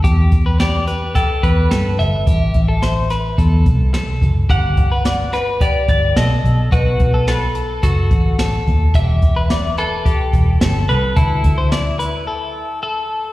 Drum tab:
HH |xxxxxxxx|xxxxxxxx|xxxxxxxx|xxxxxxxx|
SD |--o---o-|--oo--o-|--oo--o-|--o---o-|
BD |oo--oo--|oo--oo-o|oo--oo--|oo--oo-o|

HH |xxxxxxxx|xxxx----|
SD |--o---o-|--oo----|
BD |oo--oo--|oo------|